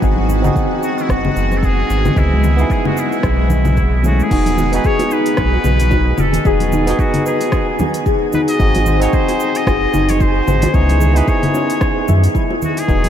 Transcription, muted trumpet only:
0.84 1.00 F#4 medium
0.98 1.10 E4 medium
1.11 1.59 F#4 loud
1.58 1.67 A4 medium
1.65 2.20 G#4 loud
2.18 2.74 E4 loud
2.72 2.87 G#4 medium
2.87 3.01 F#4 medium
3.00 4.06 E4 medium
4.07 4.25 F#4 medium
4.23 4.75 G#4 loud
4.75 4.88 B4 loud
4.86 5.14 C#5 loud
5.13 6.22 B4 loud
6.20 6.49 A4 medium
6.47 7.01 G#4 loud
7.00 7.26 F#4 medium
7.27 8.03 G#4 medium
8.35 8.41 B4 medium
8.50 8.99 D#5 loud
9.02 9.15 C#5 medium
9.14 9.58 C5 loud
9.57 10.11 D#5 loud
10.10 10.23 C#5 medium
10.22 10.76 C5 loud
10.75 11.19 C#5 loud
11.17 11.30 B4 medium
11.29 12.35 C#5 medium
12.65 12.81 F#4 medium
12.79 13.09 G#4 loud

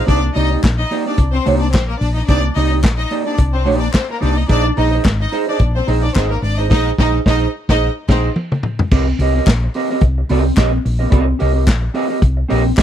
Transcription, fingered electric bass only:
0.09 0.28 C2 loud
0.36 0.56 C2 medium
0.64 0.83 A#1 medium
1.18 1.38 C2 medium
1.47 1.74 C2 medium
1.74 1.94 A#1 medium
2.01 2.21 A#1 medium
2.29 2.49 C2 medium
2.56 2.84 C2 medium
2.84 3.04 A#1 medium
3.39 3.68 C2 loud
3.68 3.87 A#1 loud
4.23 4.42 C2 medium
4.50 4.70 A#1 loud
4.78 4.97 A#1 loud
5.05 5.25 G#1 medium
5.60 5.80 A#1 medium
5.88 6.08 A#1 medium
6.16 6.36 G#1 medium
6.42 6.70 G#1 medium
6.71 6.90 A#1 loud
6.99 7.18 A#1 loud
7.26 7.46 A#1 loud
7.70 7.88 A#1 loud
8.09 8.28 A#1 loud
8.92 9.11 C2 loud
9.19 9.39 C2 loud
9.47 9.67 A#1 loud
10.02 10.22 C2 loud
10.30 10.50 C2 loud
10.58 10.77 A#1 medium
10.85 11.05 A#1 medium
11.12 11.32 C2 loud
11.41 11.68 C2 loud
11.68 11.87 A#1 medium
12.22 12.42 C2 medium
12.51 12.71 A#1 loud

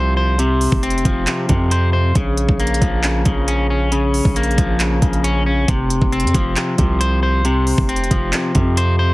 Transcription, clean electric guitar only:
0.00 0.38 C3 medium
0.00 0.39 F3 loud
0.00 0.17 C4 medium
0.00 0.16 C5 loud
0.17 1.27 C5 medium
0.39 1.26 C3 medium
0.83 1.93 C4 medium
1.05 2.15 F3 loud
1.27 1.48 C3 medium
1.49 2.15 C3 medium
1.72 1.92 C5 medium
1.93 2.15 C5 medium
2.15 3.02 C#3 medium
2.60 3.70 A#3 medium
2.82 3.92 F3 medium
3.04 3.25 C#3 medium
3.26 3.91 C#3 medium
3.48 3.69 C#4 medium
3.70 4.80 C#4 medium
3.92 4.79 C#3 medium
4.36 5.46 A#3 medium
4.58 5.68 F3 medium
4.81 5.01 C#3 medium
5.02 5.68 C#3 medium
5.24 5.45 C#4 loud
5.46 5.68 C#4 medium
5.68 6.55 C3 medium
6.12 7.23 C4 medium
6.35 7.45 F3 medium
6.57 6.77 C3 medium
6.79 7.44 C3 medium
7.01 7.22 C5 loud
7.23 8.33 C5 medium
7.45 8.32 C3 medium
7.89 8.99 C4 medium
8.11 9.14 F3 loud
8.33 8.54 C3 medium
8.55 9.14 C3 medium
8.78 8.98 C5 medium
8.99 9.14 C5 medium

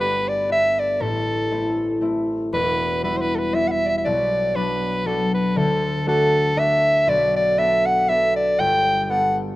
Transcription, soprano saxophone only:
0.01 0.30 B4 loud
0.29 0.51 D5 medium
0.52 0.81 E5 loud
0.79 1.03 D5 medium
1.02 2.03 A4 medium
2.54 3.00 B4 medium
3.04 3.19 B4 medium
3.17 3.23 C5 medium
3.21 3.37 B4 medium
3.35 3.40 A4 soft
3.35 3.56 B4 medium
3.55 3.69 E5 loud
3.68 3.87 E5 medium
3.68 3.73 F#5 medium
3.85 3.89 D5 medium
3.85 3.97 E5 medium
3.98 4.06 E5 medium
4.05 4.57 D5 loud
4.56 5.08 B4 medium
5.06 5.34 A4 loud
5.34 5.59 B4 medium
5.57 6.07 A4 loud
6.08 6.60 A4 loud
6.59 7.10 E5 loud
7.09 7.36 D5 loud
7.36 7.60 D5 loud
7.59 7.88 E5 loud
7.86 8.11 F#5 loud
8.09 8.35 E5 loud
8.36 8.61 D5 loud
8.60 9.04 G5 loud
9.04 9.12 G5 medium
9.10 9.37 F#5 loud

